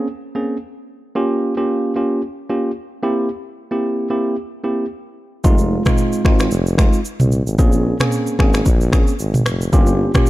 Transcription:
0.35 A#3 C4 C#4 G#4
1.15 A#3 C#4 F4 G4
1.57 A#3 C#4 F4 G4
1.96 A#3 C#4 F4 G4
2.49 A#3 C#4 F4 G4
3.03 A#3 C4 E4 G4
3.71 A#3 C4 E4 G4
4.10 A#3 C4 E4 G4
4.64 A#3 C4 E4 G4
5.44 F1 G#3 C4 D#4 F4, kick, shaker
5.58 shaker
5.86 G#3 C4 D#4 F4, finger snap, kick, cross-stick, mid tom, shaker
5.98 shaker
6.13 shaker
6.24 G#1 G#3 C4 D#4 F4, finger snap, kick, cross-stick
6.39 finger snap, cross-stick, shaker
6.51 F1, shaker
6.67 shaker
6.78 G#3 C4 D#4 F4, finger snap, kick, cross-stick, shaker
6.93 shaker
7.05 shaker
7.20 C2, mid tom, shaker
7.32 shaker
7.47 G#1, shaker
7.58 A#1 A#3 C4 C#4 G#4, kick, shaker
7.72 shaker
8.00 A#3 C4 C#4 G#4, finger snap, cross-stick, mid tom, shaker
8.12 shaker
8.27 shaker
8.39 G#1 A#3 C4 C#4 G#4, finger snap, kick, cross-stick
8.54 finger snap, cross-stick, shaker
8.66 A#1, kick, shaker
8.81 shaker
8.92 A#3 C4 C#4 G#4, finger snap, kick, cross-stick, shaker
9.07 shaker
9.19 G#1, shaker
9.34 mid tom, shaker
9.46 F1, finger snap, cross-stick, shaker
9.61 shaker
9.73 G1 A#3 C#4 F4 G4, kick, shaker
9.87 shaker
10.14 A#3 C#4 F4 G4, finger snap, kick, cross-stick, mid tom, shaker
10.26 shaker

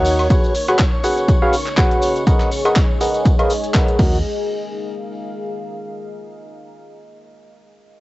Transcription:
Already playing: D#2 D#4 F#4 A#4 C#5 D#5 F#5 C#6
0.05 snare, open hi-hat, tambourine, shaker
0.19 snare, closed hi-hat, tambourine, high woodblock, shaker
0.30 C#4 F#4 G#4 B4 C#5 F#5, kick, closed hi-hat, tambourine, shaker
0.36 G#4
0.44 tambourine, shaker
0.55 open hi-hat, tambourine, shaker
0.68 F#4 G#4 B4 C#5 F#5, closed hi-hat, tambourine, high woodblock, shaker
0.75 D#5, clap
0.79 kick, closed hi-hat, tambourine, shaker
0.93 tambourine
1.04 F#4 G#4 B4 C#5 F#5, open hi-hat, tambourine, shaker
1.18 closed hi-hat, tambourine, shaker
1.28 kick, closed hi-hat, tambourine, shaker
1.42 F#4 G#4 B4 C#5 F5, tambourine
1.53 open hi-hat, tambourine, shaker
1.66 clap, closed hi-hat, tambourine, shaker
1.77 F#4 G#4 B4 C#5 F#5, kick, clap, closed hi-hat, tambourine, shaker
1.91 closed hi-hat, tambourine
2.02 open hi-hat, tambourine, shaker
2.16 closed hi-hat, tambourine, shaker
2.27 G#4 A#4 B4 D#5 F#5, kick, closed hi-hat, tambourine, shaker
2.40 clap, closed hi-hat, tambourine, shaker
2.52 open hi-hat, tambourine, shaker
2.65 G#4 A#4 B4 D#5 F#5, closed hi-hat, tambourine, high woodblock, shaker
2.76 kick, clap, closed hi-hat, tambourine, shaker
2.90 tambourine
3.01 G#4 A#4 B4 D#5 F#5, open hi-hat, tambourine, shaker
3.14 closed hi-hat, tambourine, shaker
3.25 kick, closed hi-hat, tambourine, shaker
3.38 G#4 A#4 B4 D#5 F5, closed hi-hat, tambourine, high woodblock
3.50 open hi-hat, tambourine, shaker
3.63 closed hi-hat, tambourine, shaker
3.74 G#4 A#4 B4 D#5 F#5, kick, clap, closed hi-hat, tambourine, shaker
3.88 closed hi-hat, tambourine
3.99 D#2 D#4 F#4 A#4 C#5 D#5 F#5, kick, crash, tambourine
4.07 A#4
4.13 tambourine
4.40 F5

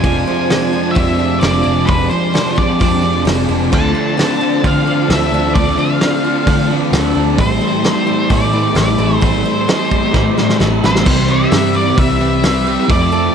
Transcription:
Already playing: C4 D4 F4 G#4 C5 D5 G#5
0.00 F1 F2 C3 G#5, kick, open hi-hat
0.04 C3 F3 G#3 D4
0.26 C3 F3 G#3 C4 D4
0.31 F3
0.50 F2 C3 F3 G#3 D4, snare, open hi-hat
0.72 C3 F3
0.91 C4 E5
0.96 F2 C3 F3 G#3 D4, kick, open hi-hat
1.19 C3 F3 G#3 D4
1.40 F1 F2 C3 G#4 D5, snare, open hi-hat
1.44 F3 G#3 D4
1.65 F1 F3 G#3 D4
1.86 F1 F2 C3 F3 B4, kick, open hi-hat
1.90 C3 F3 G#3 D4
2.10 C3 F3 G#3 C4 D4 C5
2.14 F3
2.33 F2 C3 F3 D4, snare, open hi-hat
2.38 G#3 D4
2.56 C3 F3 D5, kick
2.79 F2 C3 F3 G#3 C4, kick, open hi-hat
2.84 D4
3.02 C3 F3 G#3 D4
3.08 F3
3.24 F1 F2 C3 F3 G#4, snare, open hi-hat
3.29 G#3 D4
3.48 F1 F3 G#3 D4
3.71 D2 D3 F3 A3 C4 D4 A4 D5 A5, kick, crash
3.94 A3 D4 A4
3.98 C4
4.17 D3 F3 A3 C4 D4, snare, open hi-hat
4.21 D4 A4
4.39 F3 A3 D4
4.62 D3 F3 A3 C4 D4, kick, open hi-hat
4.66 D4 A4 F5
4.85 A3 D4 A4
4.90 C4
5.08 D2 D3 F3 A3 C4 D4 E5, snare, open hi-hat
5.13 A4
5.30 D2 C4 D4 A4
5.54 D2 D3 F3 A3 C4 D4 A4 D5, kick, open hi-hat
5.77 A3 D4 A4 F5
5.81 C4
6.01 D3 F3 A3 C4 D4 A4, snare, open hi-hat
6.24 F3 A3 D4
6.46 D3 F3 A3 C4 D4 A4, kick, open hi-hat
6.69 A3 C4 D4 A4
6.92 D2 D3 F3 A3 C4 D4 A4, snare, open hi-hat
7.14 D2 C4 D4 A4
7.37 A1 A2 E3 G3 A3 C4 E4 G4 A4 C5 E5, kick, open hi-hat
7.61 E3 G3 A3 C4 E4 A4
7.83 A2 E3 G3 A3 C4 E4 A4, snare, open hi-hat
8.07 E3 G3 A3
8.29 A2 E3 G3 A3 C4 E4, kick, open hi-hat
8.33 A4 D5
8.52 E3 A3 C4 E4 A4
8.56 G3
8.75 A1 A2 E3 G3 A3 C4 E4 A4 D5, snare, open hi-hat
8.80 A4
8.98 A1 C4 E4 A4
9.03 G3
9.21 A1 A2 E3 G3 A3 C4 E4 C5 D5, kick, open hi-hat
9.25 A4
9.44 E3 A3 C4 E4 A4
9.48 G3
9.67 A2 E3 G3 A3 C4 E4 A4, snare, open hi-hat
9.91 E3 G3 A3, kick
10.13 A2 E3 G3 A3 C4 E4 A4, kick, snare
10.36 E3 G3 A3 C4 E4 A4, snare
10.49 snare
10.59 A1 A2 E3 G3 A3 C4 E4 A4, snare
10.81 A1 G3 C4 E4 A4, snare
10.86 C5
10.96 snare
11.05 C2 C3 E3 G3 C4 E4 B4, kick, crash
11.28 G3 C4 G4 E5
11.50 G2 C3 G3 C4 E4 B4, snare, open hi-hat
11.74 G3 C4 D5
11.95 C2 C3 E3 G3 C4 E4 B4, kick, open hi-hat
11.99 C4 E5
12.19 G3 C4 E4 B4
12.43 C3 G3 C4 E4 B4, snare, open hi-hat
12.65 G3 C4 G4
12.88 F2 C3 F3 A3 C4 E4 A4 D5, kick, open hi-hat
13.11 C3 F3 A4

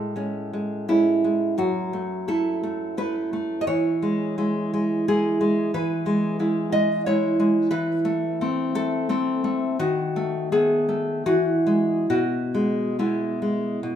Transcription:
Already playing: A2 G#3 A4
0.16 G#3 C#4
0.53 G#3
0.88 G#3 C#4 E4
1.24 G#3
1.58 F#2 F#4
1.93 A3
2.28 A3 E4 A4
2.63 A3
2.97 A3 E4 B4
3.33 A3
3.61 D#5
3.67 E3 C#5
4.02 G#3
4.38 G#3 E4
4.73 G#3
5.08 G#3 E4 G#4
5.41 G#3
5.74 E3 B4
6.06 G#3
6.39 G#3 E4
6.72 G#3 D#5
7.06 G#3 E4 C#5
7.40 G#3
7.71 E3 B4
8.05 A3
8.41 A3 C4
8.75 A3 A4
9.09 A3 C4
9.44 A3
9.79 D#3 F#4
10.16 A3
10.52 A3 B3 G#4
10.89 A3
11.26 E3 F#4
11.67 G#3
12.10 B2 F#4
12.55 G#3
12.99 G#3 B3 E4
13.42 G#3
13.83 B2

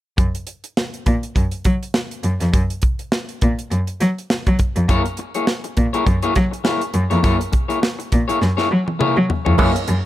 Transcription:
0.18 F#2, kick, closed hi-hat
0.35 closed hi-hat
0.47 closed hi-hat
0.64 closed hi-hat
0.77 snare
0.94 closed hi-hat
1.06 A#2, kick, closed hi-hat
1.23 closed hi-hat
1.36 F#2, kick, closed hi-hat
1.51 closed hi-hat
1.64 F#3, kick, closed hi-hat
1.83 closed hi-hat
1.94 snare
2.11 closed hi-hat
2.23 F#2, closed hi-hat
2.40 F2, snare, closed hi-hat
2.54 F#2, kick, closed hi-hat
2.70 closed hi-hat
2.82 kick, closed hi-hat
2.99 closed hi-hat
3.12 snare
3.29 closed hi-hat
3.41 A#2, kick, closed hi-hat
3.59 closed hi-hat
3.71 F#2, closed hi-hat
3.87 closed hi-hat
4.00 F#3, snare, closed hi-hat
4.18 closed hi-hat
4.30 snare
4.46 F#3, kick, closed hi-hat
4.59 kick, closed hi-hat
4.76 F2, closed hi-hat
4.89 F#2 A#3 E4 G#4 C#5, kick, closed hi-hat
5.05 muted clean electric guitar stroke, closed hi-hat
5.17 muted clean electric guitar stroke, closed hi-hat
5.34 A#3 E4 G#4 C#5, closed hi-hat
5.47 muted clean electric guitar stroke, snare
5.64 muted clean electric guitar stroke, closed hi-hat
5.77 A#2, kick, closed hi-hat
5.93 A#3 E4 G#4 C#5, closed hi-hat
6.06 F#2, muted clean electric guitar stroke, kick, closed hi-hat
6.22 A#3 E4 G#4 C#5, closed hi-hat
6.35 F#3, muted clean electric guitar stroke, kick, snare, closed hi-hat
6.51 muted clean electric guitar stroke, closed hi-hat
6.64 A#3 E4 G#4 C#5, snare
6.81 closed hi-hat
6.94 F#2, muted clean electric guitar stroke, closed hi-hat
7.10 F2 A#3 E4 G#4 C#5, closed hi-hat
7.23 F#2 A#3 E4 G#4 C#5, kick, closed hi-hat
7.40 muted clean electric guitar stroke, closed hi-hat
7.52 muted clean electric guitar stroke, kick, closed hi-hat
7.68 A#3 E4 G#4 C#5, closed hi-hat
7.82 muted clean electric guitar stroke, snare
7.99 muted clean electric guitar stroke, closed hi-hat
8.12 A#2, kick, closed hi-hat
8.28 A#3 E4 G#4 C#5, closed hi-hat
8.41 F#2, muted clean electric guitar stroke, snare
8.57 A#3 E4 G#4 C#5, snare
8.70 F#3, muted clean electric guitar stroke
8.87 muted clean electric guitar stroke, high tom
8.99 A#3 E4 G#4 C#5, mid tom
9.17 F#3
9.29 muted clean electric guitar stroke, floor tom
9.45 F2 A#3 E4 G#4 C#5, floor tom
9.58 F#2 E3 G#3 A#3 C#4 E4 G#4 C#5, kick, crash, muted conga
9.74 muted clean electric guitar stroke, closed hi-hat
9.88 F#2, muted clean electric guitar stroke, closed hi-hat

